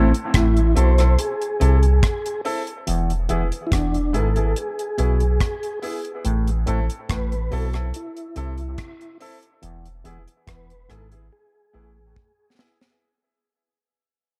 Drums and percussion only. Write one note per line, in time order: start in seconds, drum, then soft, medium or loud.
0.14 closed hi-hat medium
0.34 kick loud
0.34 cross-stick loud
0.34 closed hi-hat loud
0.57 closed hi-hat soft
0.77 closed hi-hat medium
0.98 cross-stick medium
0.98 closed hi-hat medium
1.19 closed hi-hat medium
1.42 closed hi-hat soft
1.61 closed hi-hat medium
1.83 closed hi-hat soft
2.03 kick loud
2.03 cross-stick loud
2.03 closed hi-hat medium
2.26 closed hi-hat medium
2.45 open hi-hat medium
2.67 closed hi-hat medium
2.87 closed hi-hat medium
3.10 closed hi-hat soft
3.29 closed hi-hat medium
3.52 closed hi-hat medium
3.72 kick loud
3.72 cross-stick loud
3.72 closed hi-hat loud
3.94 closed hi-hat soft
4.14 closed hi-hat medium
4.36 closed hi-hat medium
4.56 closed hi-hat medium
4.79 closed hi-hat soft
4.98 closed hi-hat medium
5.20 closed hi-hat soft
5.40 kick loud
5.40 cross-stick loud
5.40 closed hi-hat medium
5.63 closed hi-hat medium
5.83 open hi-hat medium
6.05 closed hi-hat medium
6.25 closed hi-hat medium
6.47 closed hi-hat medium
6.67 closed hi-hat medium
6.90 closed hi-hat medium
7.09 kick loud
7.09 cross-stick loud
7.09 closed hi-hat loud
7.32 closed hi-hat soft
7.52 open hi-hat soft
7.73 cross-stick medium
7.73 closed hi-hat medium
7.94 closed hi-hat medium
8.17 closed hi-hat medium
8.36 closed hi-hat medium
8.58 closed hi-hat soft
8.78 kick loud
8.78 cross-stick loud
8.78 closed hi-hat medium
9.01 closed hi-hat medium
9.21 open hi-hat medium
9.43 closed hi-hat soft
9.63 closed hi-hat loud
9.86 closed hi-hat soft
10.05 closed hi-hat medium
10.28 closed hi-hat medium
10.47 kick loud
10.47 cross-stick loud
10.47 closed hi-hat loud
10.70 closed hi-hat soft
10.90 cross-stick medium
10.90 closed hi-hat medium
11.12 closed hi-hat medium
12.16 kick loud
12.59 snare loud
12.81 snare medium